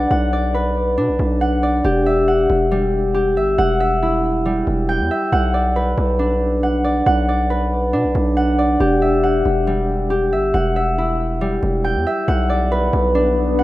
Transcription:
0.00 0.97 D4 medium
0.00 0.54 B4 medium
0.00 0.32 D5 medium
0.00 0.10 F#5 loud
0.11 0.99 B1 loud
0.11 1.41 F#5 loud
0.33 1.62 D5 medium
0.54 2.59 B4 medium
0.98 1.10 B2 loud
0.98 3.77 D4 medium
1.08 1.19 B1 loud
1.19 1.82 B1 loud
1.41 1.91 F#5 loud
1.63 3.48 D5 medium
1.85 2.47 E1 loud
1.85 3.14 G4 loud
2.06 3.37 E5 medium
2.28 3.58 F#5 medium
2.50 3.38 E1 loud
2.71 4.44 G3 medium
3.14 5.38 G4 medium
3.37 3.57 G1 loud
3.37 3.80 E5 medium
3.58 4.63 E1 loud
3.58 4.95 F#5 loud
3.80 5.11 E5 medium
4.03 6.64 E4 medium
4.45 5.37 G3 medium
4.67 5.01 E1 loud
4.89 5.38 G5 loud
5.00 5.10 E2 loud
5.11 6.83 E5 loud
5.32 5.95 B1 loud
5.32 6.63 F#5 loud
5.54 6.84 D5 medium
5.76 7.50 B4 medium
5.98 7.02 B1 loud
6.19 7.93 D4 medium
6.63 7.06 F#5 loud
6.84 7.28 D5 medium
7.06 7.95 B1 loud
7.06 8.36 F#5 loud
7.29 8.58 D5 medium
7.50 9.55 B4 medium
7.93 8.06 B2 medium
7.93 10.73 D4 medium
8.04 8.14 B1 loud
8.15 8.78 B1 loud
8.37 8.86 F#5 loud
8.58 10.43 D5 medium
8.80 9.43 E1 loud
8.80 10.10 G4 loud
9.02 10.32 E5 medium
9.23 10.54 F#5 loud
9.45 10.34 E1 loud
9.67 11.40 G3 medium
10.10 12.34 G4 medium
10.32 10.53 G1 loud
10.32 10.76 E5 medium
10.54 11.59 E1 loud
10.54 11.90 F#5 loud
10.76 12.06 E5 medium
10.98 13.59 E4 medium
11.41 12.33 G3 loud
11.63 11.97 E1 loud
11.84 12.34 G5 loud
11.95 12.06 E2 loud
12.07 13.63 E5 loud
12.28 12.91 B1 loud
12.28 13.63 B3 medium
12.28 13.63 D4 medium
12.28 13.58 F#5 loud
12.49 13.63 D5 medium
12.72 13.63 B4 loud
12.93 13.63 B1 loud
13.15 13.63 D4 medium
13.59 13.63 F#5 loud

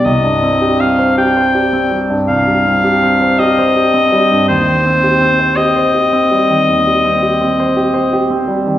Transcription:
0.05 2.25 C2 soft
0.05 0.81 D#5 medium
0.24 0.54 G2 soft
0.42 0.73 C4 soft
0.62 0.92 G4 soft
0.80 1.10 C4 soft
0.80 1.17 F5 medium
0.99 1.29 C5 soft
1.18 1.48 G4 soft
1.18 1.99 G5 medium
1.37 1.66 C5 soft
1.55 1.84 G4 soft
1.73 2.03 C4 soft
1.91 2.21 G3 soft
2.10 2.40 G2 soft
2.28 4.45 C2 soft
2.28 3.40 F5 medium
2.48 2.77 G3 soft
2.66 2.96 C4 soft
2.84 3.14 G4 soft
3.02 3.32 C4 soft
3.21 3.50 C5 soft
3.39 3.68 G4 soft
3.39 4.48 D#5 medium
3.59 3.87 C5 soft
3.76 4.05 G4 soft
3.94 4.23 C4 soft
4.12 4.42 G3 medium
4.31 4.49 G2 soft
4.48 6.65 D#2 medium
4.48 5.58 C5 medium
4.67 4.96 D#3 soft
4.86 5.14 C4 soft
5.04 5.32 G4 soft
5.21 5.50 C4 soft
5.39 5.69 C5 medium
5.56 5.87 G4 soft
5.56 8.48 D#5 medium
5.76 6.06 C5 soft
5.94 6.24 G4 soft
6.13 6.43 C4 soft
6.31 6.61 G3 soft
6.50 6.79 D#3 soft
6.69 8.79 D#2 soft
6.87 7.16 G3 soft
7.04 7.33 C4 soft
7.23 7.51 G4 soft
7.41 7.70 C4 soft
7.60 7.88 C5 medium
7.77 8.05 G4 soft
7.94 8.23 C5 medium
8.13 8.42 G4 medium
8.30 8.59 C4 soft
8.48 8.77 G3 medium
8.67 8.79 D#3 soft

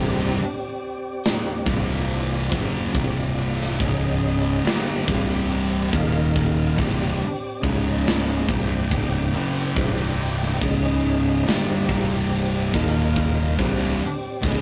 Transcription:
0.00 0.35 C1 loud
0.00 0.37 C2 medium
0.00 0.37 G2 medium
0.00 0.38 C3 loud
0.00 3.76 C4 medium
0.00 1.65 G4 medium
0.00 3.76 D5 medium
0.19 snare soft
0.38 open hi-hat medium
1.24 snare loud
1.24 open hi-hat medium
1.66 2.48 C1 medium
1.66 2.51 C2 medium
1.66 2.51 G2 medium
1.66 2.51 C3 loud
1.66 3.78 F4 medium
1.66 kick loud
2.10 open hi-hat medium
2.52 2.92 F#1 medium
2.52 2.93 F#2 medium
2.52 2.93 C#3 loud
2.52 2.93 F#3 loud
2.52 kick loud
2.94 3.76 C1 medium
2.94 3.78 C2 medium
2.94 3.79 G2 loud
2.94 3.79 C3 loud
2.94 kick loud
2.94 open hi-hat medium
3.61 snare soft
3.79 4.61 C#1 medium
3.79 4.64 C#2 medium
3.79 4.64 G#2 medium
3.79 4.64 C#3 loud
3.79 4.65 C#4 medium
3.79 4.64 G#4 medium
3.79 4.65 D#5 medium
3.79 kick loud
3.79 open hi-hat medium
4.64 5.04 G1 medium
4.64 5.06 G2 medium
4.64 5.06 D3 medium
4.64 5.06 G3 medium
4.64 5.92 C4 medium
4.64 5.92 G4 medium
4.64 5.92 D5 medium
4.64 snare loud
4.64 open hi-hat medium
5.08 5.89 C1 medium
5.08 5.92 C2 medium
5.08 5.92 G2 medium
5.08 5.92 C3 loud
5.08 kick loud
5.51 open hi-hat soft
5.93 6.74 D#1 loud
5.93 6.77 D#2 loud
5.93 6.77 A#2 medium
5.93 6.78 D#3 loud
5.93 6.77 D#4 medium
5.93 6.77 A#4 medium
5.93 6.77 F5 medium
5.93 kick loud
6.36 kick loud
6.36 open hi-hat medium
6.76 7.18 C1 loud
6.76 7.20 C2 medium
6.76 7.20 G2 loud
6.76 7.20 C3 medium
6.76 7.62 C4 medium
6.76 7.62 G4 medium
6.76 7.62 D5 medium
6.76 kick loud
7.21 open hi-hat medium
7.60 8.44 C#1 loud
7.60 8.47 C#2 medium
7.60 8.47 G#2 loud
7.60 8.46 C#4 medium
7.60 8.46 G#4 medium
7.60 8.46 D#5 medium
7.60 kick loud
7.64 8.47 C#3 loud
8.06 snare loud
8.06 open hi-hat medium
8.47 8.88 C1 loud
8.47 8.90 C2 loud
8.47 8.90 G2 medium
8.47 8.90 C3 loud
8.47 10.58 C4 medium
8.47 10.59 D5 medium
8.47 10.58 G5 medium
8.47 kick loud
8.91 9.31 C#1 medium
8.91 9.32 C#2 medium
8.91 9.32 G#2 loud
8.91 9.33 C#3 loud
8.91 kick loud
8.91 open hi-hat medium
9.33 9.73 F#1 loud
9.33 9.75 F#2 loud
9.33 9.75 C#3 loud
9.33 9.75 F#3 loud
9.76 10.57 C1 loud
9.76 10.60 C2 loud
9.76 10.60 G2 loud
9.76 10.60 C3 loud
9.76 kick loud
9.76 open hi-hat medium
10.43 snare soft
10.61 11.42 C#1 medium
10.61 11.45 C#2 medium
10.61 11.45 G#2 medium
10.61 11.45 C#3 loud
10.61 11.46 C#4 medium
10.61 11.46 G#4 medium
10.61 11.46 D#5 medium
10.61 kick loud
10.61 open hi-hat medium
11.46 11.86 G1 medium
11.46 11.87 G2 medium
11.46 11.88 D3 medium
11.46 11.88 G3 loud
11.46 12.73 C4 medium
11.46 12.73 G4 medium
11.46 12.73 D5 medium
11.46 snare loud
11.46 open hi-hat medium
11.89 12.70 C1 medium
11.89 12.72 C2 medium
11.89 12.73 G2 loud
11.89 12.73 C3 loud
11.89 kick loud
12.32 open hi-hat medium
12.74 13.55 D#1 loud
12.74 13.57 D#2 loud
12.74 13.57 A#2 loud
12.74 13.58 D#3 medium
12.74 13.58 D#4 medium
12.74 13.58 A#4 medium
12.74 13.58 F5 medium
12.74 kick loud
13.16 kick loud
13.16 open hi-hat medium
13.59 13.98 C1 medium
13.59 14.00 C2 medium
13.59 14.00 G2 loud
13.59 14.00 C3 medium
13.59 14.43 C4 medium
13.59 14.43 G4 medium
13.59 14.43 D5 medium
13.59 kick loud
13.83 snare soft
14.01 open hi-hat medium
14.43 14.62 C#1 loud
14.43 14.62 C#2 medium
14.43 14.62 G#2 medium
14.43 14.62 C#3 loud
14.43 14.62 C#4 medium
14.43 14.62 G#4 medium
14.43 14.62 D#5 medium
14.43 kick loud

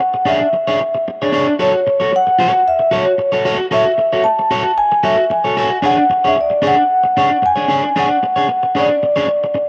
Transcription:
0.00 0.30 F#5 medium
0.00 muted clean electric guitar stroke soft
0.14 muted clean electric guitar stroke soft
0.25 0.46 D4 medium
0.25 0.41 G#4 medium
0.25 0.39 C#5 medium
0.25 1.03 E5 medium
0.40 muted clean electric guitar stroke soft
0.53 muted clean electric guitar stroke soft
0.67 0.79 D4 medium
0.67 0.80 G#4 medium
0.67 0.80 C#5 medium
0.81 muted clean electric guitar stroke soft
0.95 muted clean electric guitar stroke soft
1.08 muted clean electric guitar stroke soft
1.22 1.31 D4 medium
1.22 1.32 G#4 medium
1.22 1.32 C#5 medium
1.32 1.52 D4 loud
1.32 1.47 G#4 loud
1.32 1.47 C#5 loud
1.48 muted clean electric guitar stroke soft
1.59 1.79 F#4 medium
1.59 1.74 A4 medium
1.59 1.72 C#5 loud
1.59 2.15 C#5 medium
1.74 muted clean electric guitar stroke soft
1.87 muted clean electric guitar stroke medium
2.00 2.11 F#4 medium
2.00 2.12 A4 medium
2.00 2.12 C#5 medium
2.12 2.69 F#5 loud
2.12 muted clean electric guitar stroke soft
2.27 muted clean electric guitar stroke soft
2.39 2.59 F#4 medium
2.39 2.52 A4 loud
2.39 2.52 C#5 loud
2.53 muted clean electric guitar stroke soft
2.68 2.94 E5 loud
2.79 muted clean electric guitar stroke soft
2.91 3.11 F#4 medium
2.91 3.06 A4 medium
2.91 3.05 C#5 loud
2.96 3.44 C#5 medium
3.06 muted clean electric guitar stroke medium
3.18 muted clean electric guitar stroke soft
3.32 3.44 F#4 soft
3.32 3.44 A4 medium
3.32 3.45 C#5 medium
3.45 3.65 F#4 medium
3.45 3.58 A4 loud
3.45 3.57 C#5 loud
3.58 muted clean electric guitar stroke medium
3.71 3.91 F#4 loud
3.71 3.86 A4 medium
3.71 3.84 C#5 loud
3.71 4.27 E5 medium
3.86 muted clean electric guitar stroke soft
3.98 muted clean electric guitar stroke soft
4.12 4.24 F#4 medium
4.12 4.25 A4 medium
4.12 4.25 C#5 medium
4.24 4.79 A5 medium
4.24 muted clean electric guitar stroke soft
4.39 muted clean electric guitar stroke soft
4.51 4.71 F#4 medium
4.51 4.64 A4 medium
4.51 4.63 C#5 loud
4.64 muted clean electric guitar stroke soft
4.78 5.05 G#5 loud
4.92 muted clean electric guitar stroke medium
5.03 5.24 F#4 medium
5.03 5.18 A4 medium
5.03 5.16 C#5 medium
5.03 5.32 E5 medium
5.18 muted clean electric guitar stroke soft
5.30 5.81 G#5 medium
5.30 muted clean electric guitar stroke soft
5.44 5.56 F#4 soft
5.44 5.56 A4 medium
5.44 5.57 C#5 medium
5.57 5.77 F#4 medium
5.57 5.70 A4 loud
5.57 5.69 C#5 medium
5.71 muted clean electric guitar stroke medium
5.82 6.03 D4 loud
5.82 5.98 G#4 loud
5.82 5.96 C#5 loud
5.82 6.27 F#5 loud
5.97 muted clean electric guitar stroke soft
6.10 muted clean electric guitar stroke medium
6.24 6.35 D4 soft
6.24 6.36 G#4 medium
6.24 6.36 C#5 medium
6.24 6.39 E5 medium
6.36 muted clean electric guitar stroke soft
6.41 6.66 D5 medium
6.50 muted clean electric guitar stroke soft
6.62 6.82 D4 medium
6.62 6.76 G#4 loud
6.62 6.75 C#5 loud
6.67 7.47 F#5 loud
6.77 muted clean electric guitar stroke medium
7.04 muted clean electric guitar stroke medium
7.17 7.36 D4 medium
7.17 7.30 G#4 medium
7.17 7.29 C#5 loud
7.31 muted clean electric guitar stroke medium
7.42 7.99 G#5 loud
7.42 muted clean electric guitar stroke soft
7.56 7.67 D4 medium
7.56 7.68 G#4 medium
7.56 7.68 C#5 medium
7.68 7.89 D4 medium
7.68 7.84 G#4 medium
7.68 7.83 C#5 loud
7.84 muted clean electric guitar stroke medium
7.96 8.16 D4 loud
7.96 8.09 G#4 loud
7.96 8.08 C#5 medium
7.96 8.80 F#5 loud
8.09 muted clean electric guitar stroke soft
8.23 muted clean electric guitar stroke medium
8.36 8.47 D4 soft
8.36 8.48 G#4 medium
8.36 8.48 C#5 medium
8.48 muted clean electric guitar stroke medium
8.63 muted clean electric guitar stroke soft
8.75 8.95 D4 medium
8.75 8.90 G#4 medium
8.75 8.89 C#5 medium
8.75 9.69 D5 medium
8.90 muted clean electric guitar stroke soft
9.03 muted clean electric guitar stroke soft
9.16 9.26 D4 medium
9.16 9.27 G#4 medium
9.16 9.27 C#5 medium
9.28 muted clean electric guitar stroke soft
9.44 muted clean electric guitar stroke medium
9.54 muted clean electric guitar stroke medium

